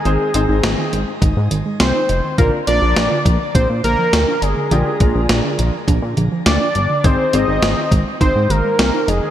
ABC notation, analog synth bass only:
X:1
M:4/4
L:1/16
Q:1/4=103
K:Ablyd
V:1 name="Analog synth bass" clef=bass
A,,, z A,,, A,,, A,,, z A,,, z A,,, A,, A,,, z C,, z F,,, z | B,,, z B,,, B,,, B,,, z B,,, z B,,, B,, B,,, z D,, z G,,, z | B,,, z B,,, B,,, B,,, z B,,, z B,,, B,, B,,, z D,, z G,,, z | A,,, z A,,, A,,, A,,, z A,,, z A,,, A,, A,,, z C,, z F,,, z |]